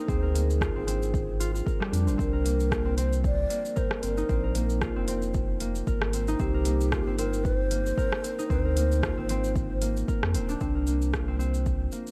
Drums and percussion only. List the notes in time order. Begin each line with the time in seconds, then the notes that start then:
0.08 kick, shaker
0.36 closed hi-hat, shaker
0.50 shaker
0.61 kick, cross-stick, shaker
0.88 closed hi-hat, shaker
1.02 shaker
1.14 kick, shaker
1.41 closed hi-hat, shaker
1.56 shaker
1.67 kick, shaker
1.82 cross-stick
1.93 closed hi-hat, shaker
2.08 shaker
2.19 kick, shaker
2.46 closed hi-hat, shaker
2.60 shaker
2.72 kick, cross-stick, shaker
2.98 closed hi-hat, shaker
3.13 shaker
3.24 kick, shaker
3.50 closed hi-hat, shaker
3.65 shaker
3.77 kick, shaker
3.91 cross-stick
4.03 closed hi-hat, shaker
4.17 shaker
4.29 kick, shaker
4.55 closed hi-hat, shaker
4.70 shaker
4.81 kick, cross-stick, shaker
5.08 closed hi-hat, shaker
5.22 shaker
5.34 kick, shaker
5.60 closed hi-hat, shaker
5.75 shaker
5.87 kick, shaker
6.02 cross-stick
6.13 closed hi-hat, shaker
6.28 shaker
6.39 kick, shaker
6.65 closed hi-hat, shaker
6.81 shaker
6.92 kick, cross-stick, shaker
7.19 closed hi-hat, shaker
7.33 shaker
7.45 kick, shaker
7.71 closed hi-hat, shaker
7.86 shaker
7.98 kick, shaker
8.12 cross-stick
8.24 closed hi-hat, shaker
8.39 shaker
8.50 kick, shaker
8.77 closed hi-hat, shaker
8.92 shaker
9.03 kick, cross-stick, shaker
9.29 closed hi-hat, shaker
9.44 shaker
9.56 kick, shaker
9.82 closed hi-hat, shaker
9.97 shaker
10.08 kick, shaker
10.23 cross-stick
10.35 closed hi-hat, shaker
10.49 shaker
10.61 kick, shaker
10.87 shaker
11.02 shaker
11.14 kick, cross-stick, shaker
11.40 shaker
11.54 shaker
11.66 kick, shaker
11.92 shaker
12.07 shaker